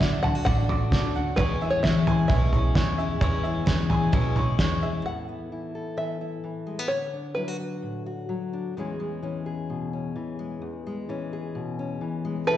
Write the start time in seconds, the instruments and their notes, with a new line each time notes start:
Already playing: steel-string acoustic guitar D3 F#4, five-string banjo E5, upright piano F#5
0.00 twelve-string acoustic guitar D3 A3 D4 F#4, upright bass D3, steel-string acoustic guitar F#3 D4, upright piano D5, kick, snare
0.23 twelve-string acoustic guitar A3 D4 F#4, steel-string acoustic guitar E4, five-string banjo F#5, upright piano A5, floor tom
0.35 steel-string acoustic guitar F#4
0.45 upright bass A1, steel-string acoustic guitar A2, twelve-string acoustic guitar D3 A3 D4 F#4, upright piano D5, five-string banjo F#5, kick, floor tom
0.69 twelve-string acoustic guitar A3 D4 F#4, steel-string acoustic guitar F#4, upright piano D6, floor tom
0.92 upright bass D2, steel-string acoustic guitar C#3, twelve-string acoustic guitar D3 A3 D4 F#4, upright piano D5, kick, snare
1.15 steel-string acoustic guitar D3, twelve-string acoustic guitar A3 D4 F#4, upright piano F#5
1.36 upright bass E2, steel-string acoustic guitar E2, twelve-string acoustic guitar E2 B2 E3 G#3 C#4, five-string banjo B4, upright piano C#5, kick, floor tom
1.40 twelve-string acoustic guitar E4
1.61 twelve-string acoustic guitar E3 G#3 C#4 E4, steel-string acoustic guitar C#4, upright piano E5
1.70 five-string banjo C#5
1.83 steel-string acoustic guitar E3 G#3, upright bass E3, twelve-string acoustic guitar E3 G#3 C#4, upright piano C#5, five-string banjo E5, kick, snare
1.87 twelve-string acoustic guitar E4
2.07 twelve-string acoustic guitar E3 G#3 C#4 E4, steel-string acoustic guitar G#4, upright piano G#5, floor tom
2.28 upright bass B1, twelve-string acoustic guitar E2 B2 E3 G#3 C#4, steel-string acoustic guitar B2, upright piano C#5, five-string banjo E5, kick, floor tom
2.32 twelve-string acoustic guitar E4
2.53 twelve-string acoustic guitar E3 G#3 C#4 E4, steel-string acoustic guitar C#4, upright piano C#6, floor tom
2.75 upright bass E2, steel-string acoustic guitar E3, twelve-string acoustic guitar E3 G#3 C#4 E4, upright piano C#5, kick, snare
2.98 twelve-string acoustic guitar E3 G#3 C#4 E4, steel-string acoustic guitar G#4, upright piano E5
3.21 upright bass E2, twelve-string acoustic guitar E2 B2 E3 G#3 C#4 E4, steel-string acoustic guitar E2, upright piano C#5, kick, floor tom
3.43 twelve-string acoustic guitar E3 G#3 C#4 E4, steel-string acoustic guitar C#4, upright piano E5
3.66 twelve-string acoustic guitar E3 G#3 C#4 E4, steel-string acoustic guitar E3 G#3, upright bass E3, upright piano C#5, kick, snare
3.90 twelve-string acoustic guitar E3 G#3 C#4 E4, steel-string acoustic guitar G#4, upright piano G#5, floor tom
4.12 upright bass B1, twelve-string acoustic guitar E2 B2 E3 G#3 C#4 E4, steel-string acoustic guitar B2, upright piano C#5, kick, floor tom
4.36 twelve-string acoustic guitar E3 G#3 C#4 E4, steel-string acoustic guitar C#4, upright piano C#6, floor tom
4.58 upright bass E2, twelve-string acoustic guitar E3 G#3 C#4 E4, steel-string acoustic guitar E3, upright piano C#5, kick, snare
4.82 twelve-string acoustic guitar E3 G#3 C#4 E4, steel-string acoustic guitar G#4, upright piano E5
5.06 steel-string acoustic guitar A2 E3 B3 E4 A4, five-string banjo F#5
5.29 steel-string acoustic guitar B3
5.52 steel-string acoustic guitar E3 E4
5.75 steel-string acoustic guitar A4
5.97 steel-string acoustic guitar E3, five-string banjo E5
6.21 steel-string acoustic guitar E4
6.44 steel-string acoustic guitar E3
6.67 steel-string acoustic guitar G#3
6.79 steel-string acoustic guitar B3
6.88 steel-string acoustic guitar D3, five-string banjo C#5
7.13 steel-string acoustic guitar D4
7.35 steel-string acoustic guitar F#3 E4, five-string banjo B4
7.48 steel-string acoustic guitar F#4
7.60 steel-string acoustic guitar F#4
7.82 steel-string acoustic guitar A2
8.06 steel-string acoustic guitar F#4
8.29 steel-string acoustic guitar F#3
8.53 steel-string acoustic guitar D4
8.77 steel-string acoustic guitar E2 E3 G#3 C#4 G#4
9.00 steel-string acoustic guitar G#3
9.22 steel-string acoustic guitar E3 C#4
9.46 steel-string acoustic guitar G#4
9.70 steel-string acoustic guitar B2
9.93 steel-string acoustic guitar C#4
10.16 steel-string acoustic guitar E3
10.39 steel-string acoustic guitar G#3
10.62 steel-string acoustic guitar E2
10.87 steel-string acoustic guitar G#3
11.09 steel-string acoustic guitar E3 C#4
11.33 steel-string acoustic guitar G#4
11.55 steel-string acoustic guitar B2
11.79 steel-string acoustic guitar C#4
12.01 steel-string acoustic guitar E3
12.25 steel-string acoustic guitar G#3
12.47 harmonium B2 E3 A3 E4, upright piano A4, five-string banjo B4